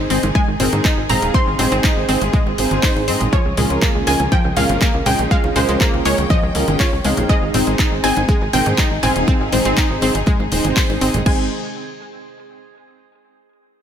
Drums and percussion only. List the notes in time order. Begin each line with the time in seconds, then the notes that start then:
0.10 open hi-hat
0.23 closed hi-hat, high bongo, high conga
0.35 kick, closed hi-hat
0.60 open hi-hat, high conga, low conga
0.73 closed hi-hat, high bongo, high conga
0.85 kick, clap, closed hi-hat
1.09 open hi-hat, high bongo, low conga
1.22 closed hi-hat
1.34 kick, closed hi-hat
1.59 open hi-hat, high bongo, low conga
1.72 closed hi-hat
1.84 kick, clap, closed hi-hat
2.08 open hi-hat, high bongo
2.22 closed hi-hat, high conga
2.33 kick, closed hi-hat, low conga
2.47 high bongo
2.58 open hi-hat, high conga
2.71 closed hi-hat, high conga
2.83 kick, clap, open hi-hat
2.96 high bongo
3.08 open hi-hat
3.20 closed hi-hat, low conga
3.33 kick, closed hi-hat
3.57 open hi-hat, high bongo, low conga
3.70 closed hi-hat
3.82 kick, clap, closed hi-hat
4.07 open hi-hat, high bongo
4.20 closed hi-hat, high conga
4.32 kick, closed hi-hat
4.56 open hi-hat, high bongo, high conga, low conga
4.69 closed hi-hat, high conga
4.81 kick, clap, closed hi-hat
4.94 high bongo
5.06 open hi-hat, low conga
5.19 closed hi-hat
5.31 kick, closed hi-hat
5.44 high bongo
5.56 open hi-hat, low conga
5.69 closed hi-hat
5.81 kick, clap, closed hi-hat
5.94 high bongo
6.05 open hi-hat
6.18 closed hi-hat, high conga
6.30 kick, closed hi-hat, high bongo, low conga
6.55 open hi-hat, high conga
6.68 closed hi-hat, high conga
6.79 kick, clap, open hi-hat, high bongo
7.04 open hi-hat
7.17 closed hi-hat, low conga
7.29 kick, closed hi-hat, high bongo
7.54 open hi-hat, low conga
7.67 closed hi-hat, high bongo
7.79 kick, clap, closed hi-hat
8.04 open hi-hat
8.16 closed hi-hat, high bongo, high conga
8.29 kick, closed hi-hat
8.53 open hi-hat, high conga, low conga
8.66 closed hi-hat, high bongo, high conga
8.78 kick, clap, closed hi-hat
9.03 open hi-hat, high bongo, low conga
9.16 closed hi-hat
9.28 kick, closed hi-hat
9.52 open hi-hat, high bongo, low conga
9.65 closed hi-hat
9.77 kick, clap, closed hi-hat
10.01 open hi-hat, high bongo
10.15 closed hi-hat, high conga
10.26 kick, closed hi-hat, low conga
10.40 high bongo
10.52 open hi-hat, high conga
10.64 closed hi-hat, high conga
10.76 kick, clap, open hi-hat
10.90 high bongo
11.01 open hi-hat
11.14 closed hi-hat, high conga, low conga
11.26 kick, crash